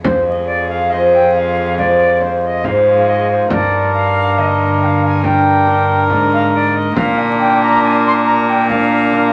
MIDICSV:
0, 0, Header, 1, 7, 480
1, 0, Start_track
1, 0, Tempo, 864553
1, 25, Time_signature, 4, 2, 24, 8
1, 5179, End_track
2, 0, Start_track
2, 0, Title_t, "Recorder"
2, 0, Program_c, 0, 74
2, 21, Note_on_c, 0, 72, 83
2, 135, Note_off_c, 0, 72, 0
2, 155, Note_on_c, 0, 75, 83
2, 253, Note_off_c, 0, 75, 0
2, 256, Note_on_c, 0, 74, 80
2, 379, Note_off_c, 0, 74, 0
2, 383, Note_on_c, 0, 77, 80
2, 498, Note_on_c, 0, 75, 84
2, 507, Note_off_c, 0, 77, 0
2, 631, Note_on_c, 0, 79, 88
2, 640, Note_off_c, 0, 75, 0
2, 746, Note_off_c, 0, 79, 0
2, 749, Note_on_c, 0, 77, 82
2, 983, Note_off_c, 0, 77, 0
2, 986, Note_on_c, 0, 74, 101
2, 1231, Note_on_c, 0, 72, 79
2, 1239, Note_off_c, 0, 74, 0
2, 1358, Note_on_c, 0, 75, 80
2, 1366, Note_off_c, 0, 72, 0
2, 1469, Note_on_c, 0, 77, 91
2, 1477, Note_off_c, 0, 75, 0
2, 1704, Note_on_c, 0, 75, 86
2, 1712, Note_off_c, 0, 77, 0
2, 1826, Note_off_c, 0, 75, 0
2, 1831, Note_on_c, 0, 72, 75
2, 1937, Note_off_c, 0, 72, 0
2, 1940, Note_on_c, 0, 75, 76
2, 1962, Note_on_c, 0, 74, 83
2, 1968, Note_off_c, 0, 75, 0
2, 2179, Note_off_c, 0, 74, 0
2, 2185, Note_on_c, 0, 77, 98
2, 2432, Note_on_c, 0, 75, 87
2, 2440, Note_off_c, 0, 77, 0
2, 2674, Note_on_c, 0, 79, 72
2, 2682, Note_off_c, 0, 75, 0
2, 2693, Note_on_c, 0, 77, 78
2, 2699, Note_off_c, 0, 79, 0
2, 2790, Note_off_c, 0, 77, 0
2, 2803, Note_on_c, 0, 80, 86
2, 2913, Note_on_c, 0, 79, 106
2, 2921, Note_off_c, 0, 80, 0
2, 3351, Note_off_c, 0, 79, 0
2, 3513, Note_on_c, 0, 77, 96
2, 3629, Note_off_c, 0, 77, 0
2, 3633, Note_on_c, 0, 74, 90
2, 3753, Note_on_c, 0, 75, 91
2, 3761, Note_off_c, 0, 74, 0
2, 3860, Note_off_c, 0, 75, 0
2, 3864, Note_on_c, 0, 77, 109
2, 3987, Note_on_c, 0, 80, 90
2, 3995, Note_off_c, 0, 77, 0
2, 4098, Note_off_c, 0, 80, 0
2, 4101, Note_on_c, 0, 79, 109
2, 4232, Note_on_c, 0, 82, 96
2, 4240, Note_off_c, 0, 79, 0
2, 4343, Note_off_c, 0, 82, 0
2, 4346, Note_on_c, 0, 80, 121
2, 4462, Note_off_c, 0, 80, 0
2, 4477, Note_on_c, 0, 84, 105
2, 4510, Note_off_c, 0, 84, 0
2, 4584, Note_on_c, 0, 82, 94
2, 4708, Note_on_c, 0, 79, 100
2, 4717, Note_off_c, 0, 82, 0
2, 4820, Note_off_c, 0, 79, 0
2, 4824, Note_on_c, 0, 77, 112
2, 5179, Note_off_c, 0, 77, 0
2, 5179, End_track
3, 0, Start_track
3, 0, Title_t, "Viola"
3, 0, Program_c, 1, 41
3, 27, Note_on_c, 1, 68, 75
3, 1448, Note_off_c, 1, 68, 0
3, 1469, Note_on_c, 1, 68, 74
3, 1938, Note_off_c, 1, 68, 0
3, 1946, Note_on_c, 1, 70, 73
3, 2887, Note_off_c, 1, 70, 0
3, 2904, Note_on_c, 1, 70, 95
3, 3844, Note_off_c, 1, 70, 0
3, 3868, Note_on_c, 1, 70, 80
3, 4806, Note_off_c, 1, 70, 0
3, 4821, Note_on_c, 1, 70, 85
3, 5179, Note_off_c, 1, 70, 0
3, 5179, End_track
4, 0, Start_track
4, 0, Title_t, "Trombone"
4, 0, Program_c, 2, 57
4, 28, Note_on_c, 2, 65, 68
4, 1448, Note_off_c, 2, 65, 0
4, 1473, Note_on_c, 2, 65, 70
4, 1948, Note_on_c, 2, 62, 76
4, 1956, Note_off_c, 2, 65, 0
4, 2907, Note_off_c, 2, 62, 0
4, 2910, Note_on_c, 2, 62, 78
4, 3696, Note_off_c, 2, 62, 0
4, 3869, Note_on_c, 2, 62, 84
4, 4803, Note_off_c, 2, 62, 0
4, 4828, Note_on_c, 2, 62, 81
4, 5179, Note_off_c, 2, 62, 0
4, 5179, End_track
5, 0, Start_track
5, 0, Title_t, "Harp"
5, 0, Program_c, 3, 46
5, 0, Note_on_c, 3, 56, 44
5, 0, Note_on_c, 3, 60, 39
5, 0, Note_on_c, 3, 72, 39
5, 25, Note_on_c, 3, 41, 53
5, 222, Note_off_c, 3, 56, 0
5, 228, Note_off_c, 3, 60, 0
5, 235, Note_off_c, 3, 72, 0
5, 511, Note_on_c, 3, 56, 52
5, 512, Note_on_c, 3, 65, 52
5, 517, Note_on_c, 3, 72, 59
5, 988, Note_off_c, 3, 56, 0
5, 992, Note_off_c, 3, 65, 0
5, 992, Note_off_c, 3, 72, 0
5, 995, Note_on_c, 3, 56, 59
5, 997, Note_on_c, 3, 65, 53
5, 1000, Note_on_c, 3, 72, 58
5, 1462, Note_off_c, 3, 56, 0
5, 1465, Note_off_c, 3, 72, 0
5, 1466, Note_off_c, 3, 65, 0
5, 1467, Note_on_c, 3, 44, 59
5, 1471, Note_on_c, 3, 56, 57
5, 1471, Note_on_c, 3, 65, 49
5, 1474, Note_on_c, 3, 72, 53
5, 1950, Note_on_c, 3, 55, 57
5, 1967, Note_off_c, 3, 41, 0
5, 1967, Note_off_c, 3, 44, 0
5, 1967, Note_off_c, 3, 56, 0
5, 1968, Note_off_c, 3, 72, 0
5, 1969, Note_off_c, 3, 65, 0
5, 2427, Note_on_c, 3, 50, 55
5, 2428, Note_on_c, 3, 58, 51
5, 2432, Note_on_c, 3, 70, 63
5, 2898, Note_off_c, 3, 58, 0
5, 2903, Note_on_c, 3, 58, 57
5, 2904, Note_off_c, 3, 70, 0
5, 2908, Note_on_c, 3, 62, 55
5, 2911, Note_on_c, 3, 70, 61
5, 3372, Note_on_c, 3, 44, 62
5, 3377, Note_off_c, 3, 58, 0
5, 3379, Note_off_c, 3, 62, 0
5, 3382, Note_off_c, 3, 70, 0
5, 3383, Note_on_c, 3, 58, 62
5, 3388, Note_on_c, 3, 70, 60
5, 3397, Note_on_c, 3, 62, 62
5, 3862, Note_on_c, 3, 46, 61
5, 3883, Note_off_c, 3, 44, 0
5, 3885, Note_off_c, 3, 55, 0
5, 4335, Note_off_c, 3, 58, 0
5, 4337, Note_off_c, 3, 62, 0
5, 4338, Note_off_c, 3, 70, 0
5, 4340, Note_on_c, 3, 58, 67
5, 4345, Note_on_c, 3, 62, 61
5, 4345, Note_on_c, 3, 70, 67
5, 4592, Note_off_c, 3, 50, 0
5, 4813, Note_off_c, 3, 58, 0
5, 4817, Note_off_c, 3, 62, 0
5, 4817, Note_off_c, 3, 70, 0
5, 4820, Note_on_c, 3, 58, 58
5, 4822, Note_on_c, 3, 62, 62
5, 4826, Note_on_c, 3, 70, 65
5, 5179, Note_off_c, 3, 46, 0
5, 5179, Note_off_c, 3, 58, 0
5, 5179, Note_off_c, 3, 62, 0
5, 5179, Note_off_c, 3, 70, 0
5, 5179, End_track
6, 0, Start_track
6, 0, Title_t, "Cello"
6, 0, Program_c, 4, 42
6, 24, Note_on_c, 4, 41, 72
6, 1467, Note_on_c, 4, 44, 75
6, 1475, Note_off_c, 4, 41, 0
6, 1943, Note_off_c, 4, 44, 0
6, 1947, Note_on_c, 4, 43, 81
6, 3385, Note_on_c, 4, 44, 73
6, 3393, Note_off_c, 4, 43, 0
6, 3859, Note_off_c, 4, 44, 0
6, 3863, Note_on_c, 4, 46, 82
6, 5179, Note_off_c, 4, 46, 0
6, 5179, End_track
7, 0, Start_track
7, 0, Title_t, "Frame drum"
7, 25, Note_on_c, 9, 64, 81
7, 81, Note_off_c, 9, 64, 0
7, 989, Note_on_c, 9, 64, 45
7, 1045, Note_off_c, 9, 64, 0
7, 1226, Note_on_c, 9, 64, 42
7, 1282, Note_off_c, 9, 64, 0
7, 1465, Note_on_c, 9, 64, 52
7, 1521, Note_off_c, 9, 64, 0
7, 1945, Note_on_c, 9, 64, 75
7, 2001, Note_off_c, 9, 64, 0
7, 2909, Note_on_c, 9, 64, 54
7, 2964, Note_off_c, 9, 64, 0
7, 3149, Note_on_c, 9, 64, 44
7, 3205, Note_off_c, 9, 64, 0
7, 3383, Note_on_c, 9, 64, 49
7, 3439, Note_off_c, 9, 64, 0
7, 3867, Note_on_c, 9, 64, 74
7, 3922, Note_off_c, 9, 64, 0
7, 4827, Note_on_c, 9, 64, 51
7, 4882, Note_off_c, 9, 64, 0
7, 5067, Note_on_c, 9, 64, 49
7, 5122, Note_off_c, 9, 64, 0
7, 5179, End_track
0, 0, End_of_file